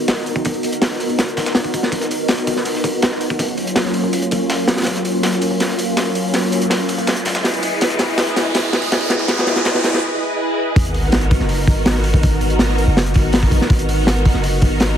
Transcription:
Already playing: G#1 B3 D#4 F#4 A#4
0.08 snare, closed hi-hat, open hi-hat
0.17 snare
0.26 closed hi-hat, open hi-hat
0.36 kick
0.45 B3 D#4 F#4 A#4, kick, closed hi-hat, open hi-hat
0.54 closed hi-hat
0.63 closed hi-hat, open hi-hat
0.72 closed hi-hat
0.82 snare, closed hi-hat, open hi-hat
0.91 snare
1.00 closed hi-hat, open hi-hat
1.09 F#1, closed hi-hat
1.19 snare, closed hi-hat, open hi-hat
1.28 closed hi-hat
1.37 G#1 B3 D#4 F#4 A#4, kick, snare, open hi-hat
1.46 snare, closed hi-hat
1.55 snare, open hi-hat
1.64 kick, closed hi-hat
1.74 kick, closed hi-hat, open hi-hat
1.83 snare
1.92 G#1 B3 D#4 F#4 A#4, kick, closed hi-hat, open hi-hat
2.01 snare, closed hi-hat
2.11 closed hi-hat, open hi-hat
2.28 snare, open hi-hat
2.38 snare, closed hi-hat
2.47 kick, closed hi-hat, open hi-hat
2.56 F#1, snare
2.65 closed hi-hat, open hi-hat
2.75 snare
2.84 G#1 B3 D#4 F#4 A#4, kick, closed hi-hat, open hi-hat
3.02 snare, closed hi-hat, open hi-hat
3.11 snare
3.21 closed hi-hat, open hi-hat
3.30 kick
3.39 D#2 F#3 A#3 C#4 F4, kick, closed hi-hat, open hi-hat
3.48 closed hi-hat
3.57 open hi-hat
3.67 closed hi-hat
3.76 snare, closed hi-hat, open hi-hat
3.85 snare
3.94 open hi-hat
4.04 C#2
4.13 closed hi-hat, open hi-hat
4.22 closed hi-hat
4.31 D#2 F#3 A#3 C#4 F4, kick, closed hi-hat, open hi-hat
4.50 snare, closed hi-hat, open hi-hat
4.68 snare, closed hi-hat, open hi-hat
4.76 snare, open hi-hat
4.82 snare, open hi-hat
4.86 D#2 F#3 A#3 C#4 F4, snare, closed hi-hat, open hi-hat, riser
4.96 snare, closed hi-hat
5.05 closed hi-hat, open hi-hat
5.23 snare, open hi-hat
5.33 snare, closed hi-hat
5.41 closed hi-hat, open hi-hat
5.51 C#2
5.60 snare, closed hi-hat, open hi-hat
5.69 snare
5.78 D#2 F#3 A#3 C#4 F4, closed hi-hat, open hi-hat
5.97 snare, closed hi-hat, open hi-hat
6.15 closed hi-hat, open hi-hat
6.33 F#3 A#3 C#4 F4, snare, closed hi-hat, open hi-hat
6.43 closed hi-hat
6.52 closed hi-hat, open hi-hat
6.61 closed hi-hat
6.70 snare, closed hi-hat, open hi-hat
6.89 closed hi-hat, open hi-hat
6.98 C#2, closed hi-hat
7.07 snare, closed hi-hat, open hi-hat
7.16 closed hi-hat
7.25 C#2 E4 G#4 B4 D#5, snare, open hi-hat
7.35 snare, closed hi-hat
7.44 snare, open hi-hat
7.54 closed hi-hat
7.63 closed hi-hat, open hi-hat
7.81 C#2 E4 G#4 B4 D#5, snare, closed hi-hat, open hi-hat
7.90 snare, closed hi-hat
7.99 snare, closed hi-hat, open hi-hat
8.18 snare, open hi-hat
8.27 snare, closed hi-hat
8.36 snare, closed hi-hat, open hi-hat
8.45 B1
8.55 snare, closed hi-hat, open hi-hat
8.64 snare
8.73 C#2 E4 G#4 B4 D#5, snare, open hi-hat
8.82 open hi-hat
8.92 snare, closed hi-hat, open hi-hat
9.01 open hi-hat
9.10 snare, closed hi-hat
9.19 snare, open hi-hat
9.28 E4 G#4 B4 D#5, snare, closed hi-hat, open hi-hat
9.38 snare, closed hi-hat
9.47 snare, closed hi-hat, open hi-hat
9.56 snare, closed hi-hat
9.65 snare, closed hi-hat, open hi-hat
9.74 snare
9.84 snare, closed hi-hat, open hi-hat
9.93 B1, snare, closed hi-hat
10.21 E4 G#4 B4 D#5
10.76 G#1 B3 D#4 F#4 A#4, kick, open hi-hat, sub drop
10.85 closed hi-hat
10.94 open hi-hat
11.12 snare, open hi-hat
11.21 closed hi-hat
11.31 kick, open hi-hat
11.40 F#1, snare
11.49 open hi-hat
11.67 G#1 B3 D#4 F#4 A#4, kick, open hi-hat
11.86 snare, open hi-hat
11.95 snare
12.04 open hi-hat
12.14 kick
12.23 B3 D#4 F#4 A#4, kick, open hi-hat
12.41 open hi-hat
12.50 closed hi-hat
12.59 snare, open hi-hat
12.69 snare
12.78 open hi-hat
12.87 F#1
12.97 snare, open hi-hat
13.06 closed hi-hat
13.14 G#1 B3 D#4 F#4 A#4, kick, open hi-hat
13.33 snare, open hi-hat
13.43 kick
13.51 kick, open hi-hat
13.61 snare
13.70 G#1 B3 D#4 F#4 A#4, kick, open hi-hat
13.79 closed hi-hat
13.89 open hi-hat
14.07 snare, open hi-hat
14.16 closed hi-hat
14.25 kick, open hi-hat
14.34 F#1, snare
14.44 open hi-hat
14.62 G#1 B3 D#4 F#4 A#4, kick, open hi-hat
14.80 snare, open hi-hat
14.89 snare

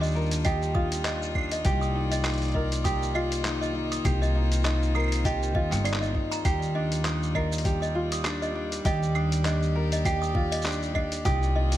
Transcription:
Already playing: D#2 D#3 G3 D4 F4 G4
0.01 D#5, shaker
0.06 shaker
0.11 A#4, shaker
0.16 shaker
0.21 shaker
0.26 shaker
0.31 closed hi-hat, shaker
0.45 G4 D#5, kick, closed hi-hat, claves, shaker
0.62 shaker
0.75 F4 D#6, kick
0.92 closed hi-hat, shaker
1.05 D4 D#5, clap, closed hi-hat, shaker
1.22 shaker
1.35 D4, kick, claves
1.38 claves
1.43 claves
1.45 claves
1.49 D#5, closed hi-hat, claves, shaker
1.64 C2 A#3 G4 D5, kick, closed hi-hat, shaker
1.81 D#6, shaker
1.95 D#4
2.11 D#5, closed hi-hat, shaker
2.25 D#4, clap, closed hi-hat, claves, shaker
2.29 closed hi-hat
2.33 closed hi-hat
2.38 closed hi-hat
2.42 closed hi-hat, shaker
2.45 closed hi-hat
2.48 closed hi-hat
2.52 A#4 D#5, kick, closed hi-hat
2.72 closed hi-hat, shaker
2.84 G4 D#6, kick, closed hi-hat, shaker
3.03 shaker
3.15 F4 D#5, claves
3.32 closed hi-hat, shaker
3.45 D#4, clap, closed hi-hat, shaker
3.61 D#5, shaker
3.75 D#4
3.92 D#6, closed hi-hat, shaker
4.05 C2 C4 G4, kick, closed hi-hat, claves, shaker
4.22 D#5, shaker
4.35 D#4
4.52 closed hi-hat, shaker
4.64 D#4 D#5, clap, closed hi-hat, shaker
4.83 shaker
4.95 A#4 D#6, claves
5.00 claves
5.04 claves
5.08 claves
5.12 closed hi-hat, claves, shaker
5.15 claves
5.19 claves
5.22 G4 D#5, kick, closed hi-hat, claves, shaker
5.43 shaker
5.55 D#2 F4 D#5, kick
5.72 G1 G5, clap, closed hi-hat, shaker
5.84 D#4 D5, closed hi-hat, claves, shaker
5.94 clap
6.01 D#5, shaker
6.15 D#4, kick
6.31 A#5, closed hi-hat, shaker
6.45 D#2 G3 G4 D5, kick, closed hi-hat, claves, shaker
6.62 shaker
6.75 D4 D#5
6.92 closed hi-hat, shaker
7.05 D4 D#6, clap, closed hi-hat, shaker
7.23 shaker
7.35 A#4 D#5, kick, claves
7.52 shaker
7.58 closed hi-hat
7.65 G4, kick, closed hi-hat, shaker
7.82 D#5, shaker
7.95 F4
8.12 D#6, closed hi-hat, shaker
8.25 D4, clap, closed hi-hat, claves, shaker
8.42 D#5, shaker
8.55 D4
8.72 closed hi-hat, shaker
8.85 D#2 G4 D#5, kick, closed hi-hat, shaker
9.03 shaker
9.15 D4 D#6, claves
9.32 closed hi-hat, shaker
9.45 D4 D#5, clap, closed hi-hat, shaker
9.63 shaker
9.75 A#4
9.92 D#5, closed hi-hat, shaker
10.05 G4, kick, closed hi-hat, claves, shaker
10.22 D#6, shaker
10.35 F4, kick
10.52 D#5, closed hi-hat, shaker
10.62 D4, clap, closed hi-hat, shaker
10.66 shaker
10.72 shaker
10.83 shaker
10.95 D4 D#5, kick, claves
11.12 closed hi-hat, shaker
11.25 C2 D#3 A#3 F4 G4 D#6, kick, closed hi-hat, shaker
11.43 shaker
11.55 D#4 D#5
11.72 closed hi-hat, shaker

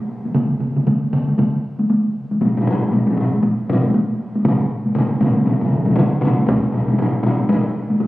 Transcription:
0.25 taiko high
0.34 taiko mid, taiko high
0.60 taiko mid
0.76 taiko mid, taiko high
0.87 taiko mid, taiko high
1.13 taiko mid
1.28 taiko high
1.38 taiko mid, taiko high
1.79 taiko high
1.90 taiko high
2.31 taiko high
2.41 taiko low-mid, taiko high
2.57 taiko low-mid
2.67 taiko low-mid
2.83 taiko high
2.92 taiko low-mid, taiko high
3.07 taiko low-mid
3.17 taiko low-mid
3.33 taiko high
3.43 taiko high
3.70 taiko low-mid
3.84 taiko high
3.94 taiko high
4.35 taiko high
4.45 taiko low-mid, taiko mid, taiko high
4.86 taiko high
4.95 taiko low-mid, taiko mid, taiko high
5.20 taiko low-mid, taiko mid, taiko high
5.37 taiko high
5.46 taiko low-mid, taiko mid, taiko high
5.61 taiko low-mid, taiko mid
5.70 taiko low-mid, taiko mid
5.86 taiko low-mid, taiko mid, taiko high
5.96 taiko low-mid, taiko mid, taiko high
6.21 taiko low-mid, taiko mid
6.38 taiko high
6.47 taiko, taiko low-mid, taiko high
6.72 taiko low-mid
6.88 taiko low-mid, taiko high
6.99 taiko low-mid, taiko high
7.24 taiko low-mid
7.40 taiko high
7.49 taiko low-mid, taiko high
7.90 taiko high
8.00 taiko high

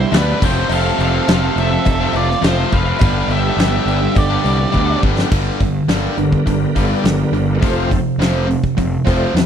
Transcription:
Already playing: G2 D3 G3 B3 D4 E4 G4 B4 C5
0.12 D2 G2 D3 G3 B3 D4, snare, cowbell, crash
0.17 D4 B4
0.41 F1 F2 C3 F3 A3 C4 C#4 F#4 A#4 C#5 G5, kick, crash
0.46 C5
0.55 F3 A3 C4
0.63 C4 F4 A4 C5
0.69 F1 F2 C3 F3 A3 C4 F5, cowbell, crash
0.75 A4
0.99 F1 C3 F3 A3 C4 F5, cowbell, crash
1.03 A4
1.13 F3 A3 C4
1.28 F1 F2 C3 F3 A3 C4 F5, snare, cowbell, crash
1.34 A4
1.56 F1 C3 F3 A3 C4 E5, crash
1.63 A4
1.71 muted distorted electric guitar stroke
1.85 F1, kick, cowbell, crash
2.00 F3 A3 C4
2.13 F1 D5, cowbell, crash
2.18 F4
2.29 muted distorted electric guitar stroke, snare
2.42 F1 F2 C3 F3 A3 C4 C5, snare, cowbell, crash
2.47 F4
2.72 F1 C3 F3 A3 C4 B4 F5, kick, crash
2.87 F3 A3 C4
2.99 G1 G2 D3 G3 B3 D4 G4 B4, kick, cowbell, crash
3.28 G1 D3 G3, cowbell, crash
3.32 B3 D4 G4 E5
3.45 G3 B3 D4
3.57 G1 G2 D3 G3 B3, snare, cowbell, crash
3.61 D4
3.85 G1 D3 G3 B3, crash
3.90 D4
4.02 muted distorted electric guitar stroke
4.15 G1 G4 D5, kick, cowbell, crash
4.30 G3 B3 D4
4.44 C2, cowbell, crash
4.59 muted distorted electric guitar stroke
4.72 D2 G2 D3 G3 B3 D4, kick, cowbell
5.01 G1 D3 G3 B3 D4, kick
5.05 G2
5.15 G3 B3 D4, snare
5.30 G1 G2 D3 G3, kick, crash
5.60 G1 G2 D3, kick, open hi-hat
5.88 G1 G2 D3 G3, snare, open hi-hat
5.94 A#4
6.17 G1 G2 D3 G3 B3, open hi-hat
6.32 kick
6.46 G1 G2 D3, kick, open hi-hat
6.75 G1 G2 D3 G3 D5, kick, open hi-hat
6.93 D5
7.04 G1 G2 D3 A#4, snare, open hi-hat
7.32 G1 G2 D3, open hi-hat
7.59 F1 F2 C3 F3 A3 C4, kick, open hi-hat
7.64 F4
7.90 F2 C3, kick, open hi-hat
8.18 F1 F2 C3 F3, snare, open hi-hat
8.48 F2 C3, open hi-hat
8.64 kick
8.77 F1 F2 C3, kick, open hi-hat
9.05 F1 F2 C3 F3 A3 C4, kick, open hi-hat
9.11 C#5
9.16 D5
9.33 E2 F2 C3 B4, snare, open hi-hat

